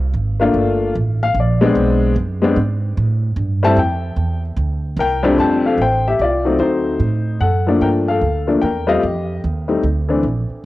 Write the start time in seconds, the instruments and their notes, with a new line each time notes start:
Already playing: upright bass C2
0.14 upright bass G#1
0.40 upright piano A3 A#3 D4 F4
0.54 upright bass G1
0.95 upright bass A1
1.23 upright piano F5
1.34 upright bass A#1
1.40 upright piano D5
1.61 upright piano G#3 B3 C4 D4
1.75 upright bass B1
2.16 upright bass F#2
2.42 upright piano G#3 B3 C4 D4
2.56 upright bass G#2
2.97 upright bass A2
3.36 upright bass G2
3.63 upright piano G3 A3 C4 E4 A5
3.77 upright bass F2, upright piano G5
4.16 upright bass E2
4.57 upright bass D2
4.97 upright bass C2, upright piano A#4 G5
5.23 upright piano F2 G3 A3 C4 D4
5.38 upright bass F1, upright piano C5 A5
5.66 upright piano A4 F5
5.78 upright bass A1, upright piano G5
5.82 upright piano C5
6.07 upright piano G4 E5
6.19 upright bass C2, upright piano F4 D5
6.45 upright piano F#3 A3 C4 D#4
6.59 upright bass D2, upright piano D#4 C5
7.00 upright bass A2
7.40 upright bass F#2, upright piano A4 F#5
7.67 upright piano F3 A3 A#3 D4
7.81 upright bass G2, upright piano A#4 G5
8.08 upright piano A4 F5
8.21 upright bass D2
8.47 upright piano F3 A3 A#3 D4
8.62 upright bass E2, upright piano A#4 G5
8.87 upright piano G3 A3 C4 F4 G4 D#5
9.03 upright bass F2
9.44 upright bass D#2
9.68 upright piano G3 A3 C4 D#4
9.83 upright bass D2
10.09 upright piano E3 A3 C4 D4
10.23 upright bass A#1
10.50 muted upright bass stroke